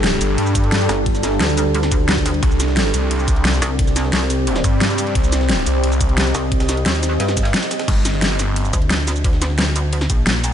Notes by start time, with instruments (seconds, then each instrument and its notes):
Already playing: detuned saw bass G1, ambient pad G3 D4 A4
0.04 snare, closed hi-hat, ride
0.21 detuned saw bass G1, open hi-hat, ride, shaker
0.38 detuned saw bass G2, closed hi-hat, ride
0.47 shaker
0.55 kick, closed hi-hat, ride, shaker
0.64 ride
0.72 snare, closed hi-hat, ride
0.81 shaker
0.89 wobble bass G1, snare, open hi-hat, ride, shaker
1.06 kick, closed hi-hat, ride
1.15 snare, shaker
1.23 snare, closed hi-hat, ride, shaker
1.32 snare
1.40 wobble bass D2, snare, closed hi-hat, ride
1.49 shaker
1.57 snare, open hi-hat, ride, shaker
1.75 closed hi-hat, ride
1.83 snare, shaker
1.92 kick, closed hi-hat, ride, shaker
2.09 snare, closed hi-hat, ride
2.17 kick, shaker
2.26 snare, open hi-hat, ride, shaker
2.34 ride
2.43 detuned saw bass C2, ambient pad C4 G4 D5, kick, closed hi-hat, ride
2.51 shaker
2.60 snare, closed hi-hat, ride, shaker
2.68 snare
2.77 snare, closed hi-hat, ride
2.94 detuned saw bass C2, open hi-hat, ride, shaker
3.11 detuned saw bass C2, closed hi-hat, ride
3.19 shaker
3.28 kick, closed hi-hat, ride, shaker
3.36 ride
3.45 snare, closed hi-hat, ride
3.53 shaker
3.62 wobble bass C2, snare, open hi-hat, ride, shaker
3.79 kick, closed hi-hat, ride
3.88 snare, shaker
3.96 snare, closed hi-hat, ride, shaker
4.05 snare
4.13 wobble bass C2, snare, closed hi-hat, ride
4.30 snare, open hi-hat, ride, shaker
4.47 closed hi-hat, ride
4.56 snare, shaker
4.64 detuned saw bass G2, kick, closed hi-hat, ride, shaker
4.81 snare, closed hi-hat, ride
4.90 shaker
4.98 open hi-hat, ride, shaker
5.07 ride
5.15 detuned saw bass C2, ambient pad D#5, kick, closed hi-hat, ride
5.24 shaker
5.32 snare, closed hi-hat, ride, shaker
5.41 snare
5.49 snare, closed hi-hat, ride
5.66 detuned saw bass C2, open hi-hat, ride, shaker
5.83 detuned saw bass C2, closed hi-hat, ride
5.92 shaker
6.01 kick, closed hi-hat, ride, shaker
6.09 ride
6.18 snare, closed hi-hat, ride
6.26 shaker
6.35 wobble bass C2, snare, open hi-hat, ride, shaker
6.52 kick, closed hi-hat, ride
6.60 snare, ride, shaker
6.69 snare, closed hi-hat, ride, shaker
6.77 ride
6.86 wobble bass D#2, snare, closed hi-hat, ride
6.94 shaker
7.03 snare, open hi-hat, ride, shaker
7.11 snare
7.20 wobble bass G2, snare, closed hi-hat, ride
7.28 snare, shaker
7.37 kick, snare, closed hi-hat, ride, shaker
7.45 snare, ride
7.54 snare, closed hi-hat, ride
7.62 snare, ride, shaker
7.71 snare, open hi-hat, ride, shaker
7.79 snare, ride
7.88 detuned saw bass G1, kick, closed hi-hat, crash, ride
8.05 snare, closed hi-hat, ride, shaker
8.14 snare
8.22 snare, closed hi-hat, ride
8.39 snare, open hi-hat, ride, shaker
8.56 closed hi-hat, ride
8.65 shaker
8.73 wobble bass D2, kick, closed hi-hat, ride, shaker
8.82 ride
8.90 snare, closed hi-hat, ride
9.07 snare, open hi-hat, ride, shaker
9.16 shaker
9.24 kick, closed hi-hat, ride
9.33 snare
9.41 snare, closed hi-hat, ride, shaker
9.50 snare
9.58 snare, closed hi-hat, ride
9.76 open hi-hat, ride, shaker
9.93 closed hi-hat, ride
10.01 snare, shaker
10.10 wobble bass A#1, kick, closed hi-hat, ride, shaker
10.27 snare, closed hi-hat, ride
10.44 open hi-hat, ride, shaker